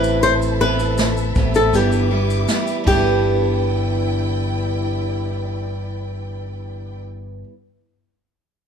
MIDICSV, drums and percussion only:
0, 0, Header, 1, 2, 480
1, 0, Start_track
1, 0, Key_signature, 1, "major"
1, 0, Tempo, 750939
1, 149, Time_signature, 4, 2, 24, 8
1, 5547, End_track
2, 0, Start_track
2, 0, Title_t, "Drums"
2, 23, Note_on_c, 9, 82, 63
2, 87, Note_off_c, 9, 82, 0
2, 147, Note_on_c, 9, 82, 69
2, 211, Note_off_c, 9, 82, 0
2, 270, Note_on_c, 9, 82, 58
2, 334, Note_off_c, 9, 82, 0
2, 509, Note_on_c, 9, 82, 49
2, 573, Note_off_c, 9, 82, 0
2, 626, Note_on_c, 9, 82, 90
2, 631, Note_on_c, 9, 38, 123
2, 690, Note_off_c, 9, 82, 0
2, 695, Note_off_c, 9, 38, 0
2, 750, Note_on_c, 9, 82, 54
2, 813, Note_off_c, 9, 82, 0
2, 863, Note_on_c, 9, 82, 45
2, 869, Note_on_c, 9, 36, 98
2, 927, Note_off_c, 9, 82, 0
2, 933, Note_off_c, 9, 36, 0
2, 986, Note_on_c, 9, 82, 49
2, 1050, Note_off_c, 9, 82, 0
2, 1109, Note_on_c, 9, 82, 70
2, 1172, Note_off_c, 9, 82, 0
2, 1228, Note_on_c, 9, 82, 49
2, 1292, Note_off_c, 9, 82, 0
2, 1473, Note_on_c, 9, 82, 45
2, 1537, Note_off_c, 9, 82, 0
2, 1587, Note_on_c, 9, 38, 93
2, 1587, Note_on_c, 9, 82, 75
2, 1651, Note_off_c, 9, 38, 0
2, 1651, Note_off_c, 9, 82, 0
2, 1709, Note_on_c, 9, 82, 41
2, 1773, Note_off_c, 9, 82, 0
2, 1833, Note_on_c, 9, 36, 106
2, 1833, Note_on_c, 9, 49, 82
2, 1897, Note_off_c, 9, 36, 0
2, 1897, Note_off_c, 9, 49, 0
2, 5547, End_track
0, 0, End_of_file